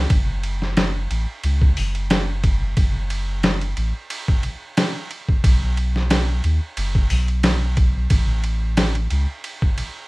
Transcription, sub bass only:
0.10 1.07 F#1 medium
1.10 1.26 A1 medium
1.44 1.73 C#2 medium
1.78 2.74 F#1 medium
2.77 3.74 F#1 medium
3.77 3.93 A1 medium
5.44 6.41 B1 medium
6.44 6.60 D#2 medium
6.77 7.07 F#1 medium
7.11 8.08 B1 medium
8.11 9.08 A1 medium
9.11 9.26 C#2 medium

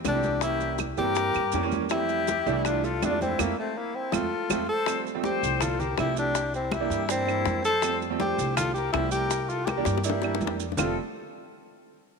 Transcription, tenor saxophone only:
0.07 0.41 D4 loud
0.43 0.77 E4 loud
0.98 1.68 G4 loud
1.91 2.61 E4 loud
2.65 2.85 D4 medium
2.84 3.06 F4 medium
3.04 3.21 D4 loud
3.22 3.41 C4 medium
3.40 3.58 A#3 medium
3.59 3.79 A3 medium
3.77 3.97 A#3 medium
3.95 4.14 C4 medium
4.13 4.68 F4 medium
4.69 5.03 A4 loud
5.25 5.62 G4 medium
5.61 5.81 F4 medium
5.80 5.98 G4 medium
6.00 6.16 E4 loud
6.19 6.52 D4 loud
6.55 6.74 C4 medium
6.73 7.10 E4 medium
7.11 7.62 C4 medium
7.65 7.99 A4 loud
8.21 8.55 G4 loud
8.56 8.73 F4 loud
8.74 8.92 G4 medium
8.92 9.10 E4 loud
9.12 9.51 G4 loud
9.49 9.67 F4 medium
9.66 10.04 G4 medium
10.04 10.56 E4 medium
10.78 10.96 F4 medium

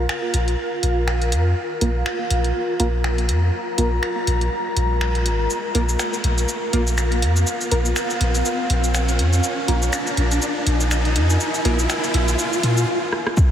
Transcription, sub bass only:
0.34 0.55 A#1 loud
0.83 1.34 A#1 loud
1.32 1.54 F2 medium
1.81 2.03 A#1 medium
2.31 2.52 A#1 loud
2.80 3.30 A#1 loud
3.29 3.50 F2 medium
3.78 4.00 A#1 loud
4.27 4.49 A#1 loud
4.77 5.27 A#1 medium
5.26 5.47 G#1 medium
5.75 5.96 A#1 loud
6.24 6.45 A#1 loud
6.73 7.24 A#1 loud
7.22 7.44 F2 medium
7.72 7.93 A#1 medium
8.21 8.42 A#1 loud
8.70 9.21 A#1 loud
9.19 9.41 F2 medium
9.68 9.90 A#1 medium
10.17 10.39 A#1 loud
10.67 11.17 A#1 loud
11.16 11.37 F2 medium
11.65 11.86 A#1 loud
12.14 12.36 A#1 loud
12.63 12.85 A#2 loud

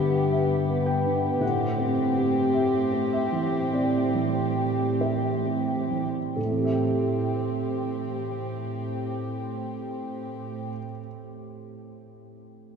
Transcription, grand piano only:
0.00 1.05 D3 soft
0.00 0.68 B3 soft
0.00 0.54 G4 soft
0.00 0.32 E5 medium
0.00 1.41 F#5 medium
0.32 0.90 E5 soft
0.68 1.27 B3 soft
0.86 1.38 G5 medium
1.05 1.42 D3 soft
1.40 3.69 A2 soft
1.40 3.09 F#5 medium
1.78 2.39 C4 soft
2.16 2.77 G4 soft
2.53 3.11 E5 soft
2.92 3.57 C4 soft
3.13 3.69 E5 soft
3.32 3.98 E3 soft
3.73 4.41 C4 soft
3.73 4.98 D5 soft
4.15 4.84 E3 soft
4.57 5.28 G4 soft
5.01 6.33 C5 soft
5.01 5.74 E5 soft
5.44 6.19 C4 soft
5.91 6.37 E3 soft
6.36 10.70 A2 soft
6.36 10.69 A4 soft
6.44 10.77 A3 soft
6.51 10.84 C4 soft
6.58 10.90 G4 soft
6.65 10.98 E5 soft
6.72 11.05 G5 soft

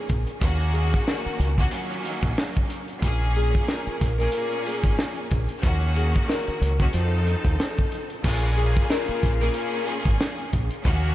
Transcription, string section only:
0.41 1.48 D#3 loud
0.41 1.48 A#3 medium
0.41 1.48 C#4 medium
0.41 1.48 F#4 loud
1.58 1.66 D#3 medium
1.58 1.67 A#3 medium
1.58 1.67 C#4 medium
1.58 1.77 F#4 loud
1.68 2.76 D#3 loud
1.68 2.77 F#3 loud
1.68 2.76 A#3 medium
1.68 2.77 C#4 medium
3.02 4.08 A#2 loud
3.02 4.09 A#3 medium
3.02 4.09 C#4 medium
3.02 4.09 G#4 loud
4.20 4.32 A#2 medium
4.20 4.32 A#3 medium
4.20 4.33 C#4 medium
4.20 4.33 G#4 loud
4.33 5.24 A#2 loud
4.33 5.25 A#3 loud
4.33 5.25 C#4 loud
4.33 5.25 G#4 loud
5.62 6.69 D#3 loud
5.62 6.69 A#3 loud
5.62 6.69 C#4 medium
5.62 6.70 F#4 loud
6.79 6.98 D#3 loud
6.79 6.98 A#3 medium
6.79 6.98 C#4 medium
6.79 6.98 F#4 loud
6.93 8.00 F3 loud
6.93 8.00 C4 medium
6.93 8.00 D#4 medium
6.93 8.00 A4 loud
8.24 9.30 A#2 medium
8.24 9.30 A#3 medium
8.24 9.31 C#4 medium
8.24 9.31 G#4 loud
9.40 9.52 A#2 medium
9.40 9.52 A#3 medium
9.40 9.53 C#4 medium
9.40 9.53 G#4 loud
9.53 10.45 A#2 medium
9.53 10.45 A#3 medium
9.53 10.46 C#4 loud
9.53 10.46 G#4 loud
10.85 11.15 D#3 loud
10.85 11.15 A#3 loud
10.85 11.15 C#4 loud
10.85 11.15 F#4 loud

